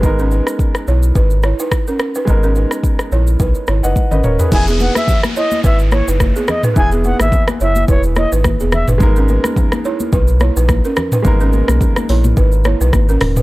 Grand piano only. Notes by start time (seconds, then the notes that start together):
0.01 G#3 B3 D#4
0.06 A#4
2.25 G#3 B3 D#4
2.30 A#4
3.83 D#5 F#5
4.11 B4 D#5
4.24 A#4 C#5
4.39 G#4 B4
4.49 B3 E4
4.54 G#4
6.74 B3 E4
6.79 G#4
8.98 G#3 A#3 B3 D#4
9.03 A#4
11.22 G#3 A#3 B3 D#4
11.27 A#4